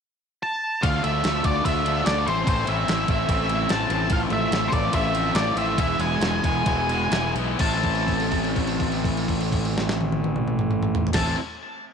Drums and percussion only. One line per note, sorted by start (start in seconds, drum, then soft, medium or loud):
0.83 kick loud
0.83 ride medium
1.04 ride medium
1.24 snare loud
1.24 ride medium
1.44 kick medium
1.44 ride medium
1.65 kick medium
1.65 ride medium
1.86 ride medium
2.06 snare loud
2.06 ride medium
2.28 snare soft
2.28 ride medium
2.47 kick loud
2.47 ride loud
2.67 ride medium
2.88 snare loud
2.88 ride medium
3.08 kick medium
3.08 ride medium
3.29 kick medium
3.29 ride medium
3.49 ride medium
3.69 snare loud
3.69 ride medium
3.90 snare soft
3.90 ride medium
4.10 kick loud
4.10 ride medium
4.30 ride medium
4.52 snare loud
4.52 ride medium
4.72 kick medium
4.72 ride medium
4.93 kick medium
4.93 ride loud
5.15 ride medium
5.35 snare loud
5.35 ride loud
5.57 ride medium
5.78 kick loud
5.78 ride loud
6.00 ride medium
6.21 snare loud
6.21 ride medium
6.44 kick medium
6.44 ride medium
6.66 kick medium
6.66 ride medium
6.89 ride medium
7.12 snare loud
7.12 ride medium
7.36 ride medium
7.59 kick loud
7.59 crash medium
7.83 kick medium
7.83 crash soft
7.95 crash soft
8.08 kick medium
8.08 crash soft
8.20 crash medium
8.31 kick medium
8.31 crash soft
8.44 crash soft
8.56 kick medium
8.56 crash soft
8.67 crash soft
8.80 kick medium
8.80 crash soft
8.92 crash soft
9.04 kick medium
9.04 crash medium
9.17 crash medium
9.28 kick medium
9.28 crash soft
9.41 crash medium
9.52 kick medium
9.52 crash medium
9.65 crash medium
9.78 snare medium
9.89 snare medium
10.01 high tom medium
10.12 high tom loud
10.24 high tom loud
10.36 mid tom medium
10.48 mid tom loud
10.59 mid tom loud
10.71 mid tom loud
10.83 mid tom loud
10.95 floor tom loud
11.07 floor tom loud
11.13 kick loud
11.13 snare loud
11.13 crash loud